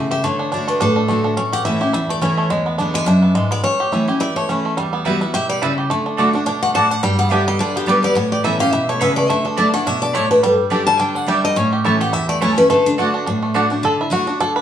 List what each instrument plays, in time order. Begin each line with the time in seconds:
Already playing: steel-string acoustic guitar C#3 E5, five-string banjo A3 E4
0.11 five-string banjo G4, steel-string acoustic guitar E5
0.24 steel-string acoustic guitar D3 C#5, five-string banjo A3
0.39 five-string banjo D4
0.52 steel-string acoustic guitar D3 A3 D4 F#4, five-string banjo D4
0.68 five-string banjo A3, steel-string acoustic guitar B4
0.80 steel-string acoustic guitar A2 A4, five-string banjo D4
0.96 five-string banjo D4
1.08 steel-string acoustic guitar D3 A3 D4 F#4, five-string banjo A3
1.24 five-string banjo D4
1.37 steel-string acoustic guitar A2, five-string banjo C#4
1.52 five-string banjo G4, steel-string acoustic guitar F#5
1.65 steel-string acoustic guitar E3 A3 C#4 E4 E5, five-string banjo E4
1.81 steel-string acoustic guitar C#4 E4, five-string banjo G4
1.93 steel-string acoustic guitar E2, five-string banjo E4
2.09 five-string banjo A3, steel-string acoustic guitar D5
2.21 steel-string acoustic guitar E3 A3 C#4 E4 C#5, five-string banjo C#4
2.38 five-string banjo A3
2.50 steel-string acoustic guitar E2, five-string banjo G#3
2.66 five-string banjo B3
2.78 steel-string acoustic guitar D3 G#3 B3 E4, five-string banjo D4
2.94 five-string banjo G#3, steel-string acoustic guitar G#5
3.06 steel-string acoustic guitar F#2 E5, five-string banjo D4
3.22 five-string banjo B3
3.35 steel-string acoustic guitar G#2, five-string banjo G#3
3.51 five-string banjo B3, steel-string acoustic guitar D5
3.64 steel-string acoustic guitar A2 C#5, five-string banjo C#4
3.80 five-string banjo G4
3.92 steel-string acoustic guitar E3 A3 C#4 E4, five-string banjo E4
4.08 steel-string acoustic guitar C#4 E4, five-string banjo G4
4.20 steel-string acoustic guitar E2 D5, five-string banjo E4
4.36 five-string banjo A3, steel-string acoustic guitar C#5
4.49 steel-string acoustic guitar E3 A3 C#4 E4, five-string banjo C#4
4.65 five-string banjo A3
4.77 steel-string acoustic guitar E2, five-string banjo G3
4.93 five-string banjo B3
5.05 steel-string acoustic guitar E3 G3 B3 F#4, mandolin G3 E4 B4 E5, five-string banjo G3
5.21 steel-string acoustic guitar B3 F#4, five-string banjo E4
5.34 steel-string acoustic guitar B2 E5, five-string banjo G4
5.49 five-string banjo G3, steel-string acoustic guitar D5
5.62 steel-string acoustic guitar C#3, mandolin G3 E4 B4 E5, five-string banjo E4
5.78 five-string banjo G4
5.90 steel-string acoustic guitar D3, five-string banjo A3
6.06 five-string banjo D4
6.17 steel-string acoustic guitar D3 A3 D4 F#4, mandolin A3 F#4 D5 F#5, five-string banjo A3
6.33 five-string banjo D4, steel-string acoustic guitar D4 F#4
6.46 steel-string acoustic guitar B2 D5, five-string banjo D4
6.63 five-string banjo A3, steel-string acoustic guitar F#5
6.74 steel-string acoustic guitar A2 A5, mandolin A3 F#4 D5 F#5, five-string banjo D4
6.91 five-string banjo D4, steel-string acoustic guitar F#5
7.03 steel-string acoustic guitar G2 G5, five-string banjo G3
7.19 five-string banjo B3, steel-string acoustic guitar F#5
7.30 steel-string acoustic guitar D3 G3 B3 G4 E5, mandolin B3 G4 D5 G5, five-string banjo D4
7.48 five-string banjo G3, steel-string acoustic guitar D#5
7.59 steel-string acoustic guitar D3 D5, five-string banjo D4
7.76 five-string banjo B3, steel-string acoustic guitar G4
7.86 steel-string acoustic guitar D3 G3 B3 G4 B4, five-string banjo G3, mandolin B3 G4 D5 G5
8.03 five-string banjo B3, steel-string acoustic guitar B3 G4 D5
8.15 steel-string acoustic guitar A2 C#5, five-string banjo B3
8.32 five-string banjo G4, steel-string acoustic guitar D5
8.44 steel-string acoustic guitar E3 B3 C#4 E4 E5, mandolin C#4 A4 E5 B5, five-string banjo E4
8.59 steel-string acoustic guitar C#4 E4 F5, five-string banjo G4
8.72 steel-string acoustic guitar B2 E5, five-string banjo E4
8.89 five-string banjo A3, steel-string acoustic guitar C#5
9.00 steel-string acoustic guitar C#3 B4, five-string banjo B3, mandolin C#4 A4 E5 B5
9.16 five-string banjo A3, steel-string acoustic guitar D5
9.29 steel-string acoustic guitar D3 E5, five-string banjo A3
9.45 five-string banjo D4, steel-string acoustic guitar A4
9.56 steel-string acoustic guitar D3 A3 D4 E4 D5, mandolin A3 E4 D5 A5, five-string banjo D4
9.74 five-string banjo A3, steel-string acoustic guitar D4 E4 F#5
9.87 steel-string acoustic guitar B2 E5, five-string banjo D4
10.02 five-string banjo D4, steel-string acoustic guitar D5
10.13 steel-string acoustic guitar A2 C#5, mandolin A3 E4 D5 A5, five-string banjo A3
10.31 five-string banjo D4, steel-string acoustic guitar B4
10.43 steel-string acoustic guitar G2 A4, five-string banjo G3
10.70 steel-string acoustic guitar D3 G3 D4 G4, mandolin A3 G4 D5 G5, five-string banjo D4
10.87 five-string banjo G3, steel-string acoustic guitar A5
11.00 steel-string acoustic guitar D3 G5, five-string banjo D4
11.15 five-string banjo D4, steel-string acoustic guitar F#5
11.26 steel-string acoustic guitar D3 G3 D4 G4 E5, five-string banjo G3, mandolin A3 G4 D5 G5
11.44 five-string banjo D4, steel-string acoustic guitar D#5
11.56 steel-string acoustic guitar A2 C#5, five-string banjo C#4
11.73 five-string banjo G4
11.84 steel-string acoustic guitar E3 A3 C#4 E4, mandolin A3 E4 C#5 A5, five-string banjo E4
12.00 five-string banjo G4, steel-string acoustic guitar F#5
12.13 steel-string acoustic guitar E2 E5, five-string banjo E4
12.29 five-string banjo A3, steel-string acoustic guitar D5
12.41 steel-string acoustic guitar E3 A3 C#4 E4 C#5, mandolin A3 E4 C#5 A5, five-string banjo C#4
12.56 five-string banjo A3, steel-string acoustic guitar C#4 E4 B4
12.70 steel-string acoustic guitar D3 A4, five-string banjo A3
12.86 steel-string acoustic guitar D4
12.98 steel-string acoustic guitar D3 A3 D4 F#4, mandolin A3 F#4 D5 F#5, five-string banjo A3
13.14 five-string banjo D4
13.26 steel-string acoustic guitar A2, five-string banjo D4
13.42 five-string banjo A3
13.54 steel-string acoustic guitar D3 A3 D4 F#4, mandolin A3 F#4 D5 F#5, five-string banjo D4
13.70 five-string banjo D4, steel-string acoustic guitar D4 F#4
13.83 steel-string acoustic guitar D3, five-string banjo A4
14.01 five-string banjo E4
14.10 steel-string acoustic guitar D3 A3 D4 F#4, five-string banjo F#4
14.27 five-string banjo D4, steel-string acoustic guitar D4 F#4
14.40 steel-string acoustic guitar D3, five-string banjo A4
14.56 five-string banjo B4